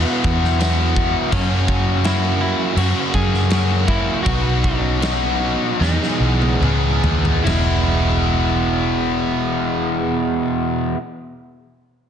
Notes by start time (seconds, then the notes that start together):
Already playing: E2 B2 E3 B3 E4 F#4
0.24 E2, kick
0.44 snare
0.59 E3 B3 E4 F#4, snare, crash
0.96 kick
1.31 F#2 C#3 F#3 A#3 C#4 F#4, kick, crash
1.68 kick
2.04 F#3 A#3 C#4 E4 F#4, snare, crash
2.41 E4
2.76 F#2 C#3 F#3 A#3 C#4 F#4, crash
3.14 F#2 G#4, kick
3.34 snare
3.49 F#3 A#3 C#4 F#4, snare, crash
3.88 E4, kick
4.23 B1 B2 F#3 B3 F#4, kick, crash
4.27 D#4 F#4
4.64 C#4, kick
5.01 F#3 B3 D#4 F#4, snare, crash
5.79 E2 B2 E3 G#3 B3 D#4 G#4, snare
6.03 snare
6.20 B1
6.42 high tom
6.61 C#2 E3 G#3 B3 C#4 G#4, mid tom
7.03 D#2, floor tom
7.25 floor tom
7.44 E1 E2 B2 E3 G#3 B3 E4, floor tom, crash
7.48 E4, snare